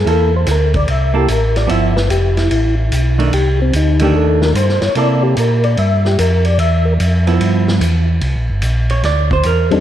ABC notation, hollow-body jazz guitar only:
X:1
M:4/4
L:1/8
Q:"Swing" 1/4=147
K:Cmix
V:1 name="Hollow-body jazz guitar"
[B,EA] z4 [B,EA] z2 | [F,=B,E] z6 [_E,A,D] | z3 [_E,A,D]3 z2 | [B,EA]4- [B,EA] z3 |
z3 [F,=B,E]3 z2 | z3 _d =d c B G |]